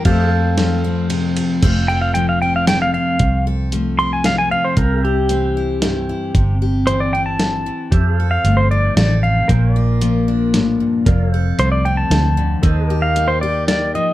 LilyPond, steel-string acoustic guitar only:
\new Staff \with { instrumentName = "Steel-string acoustic guitar" } { \time 3/4 \key f \major \tempo 4 = 114 << { <a c' a'>4. c'4 a'8 | <f a c' a'>8 a'8 a8 c'8 a'8 c'8~ | c'8 a'8 a8 c'8 a'8 c'8~ | c'8 e'8 c'8 e'8 e'8 e'8 |
r8 g'8 c'8 e'4. | r8 a'8 a8 ees'8 a'8 ees'8 | r8 f'8 bes8 d'4. | r8 a'8 a8 c'4. |
r8 g'8 ees'8 g'4. | } \\ { f,4 f4 c4 | f,4 f4 c4 | f,4 f4 c4 | c4 e4 g,4 |
c4 e4 d8 e8 | f,4 f4 c4 | bes,4 f4 a,8 g,8 | f,4 f4 c8 d8 |
ees4 bes4 ees8 f8 | } >> }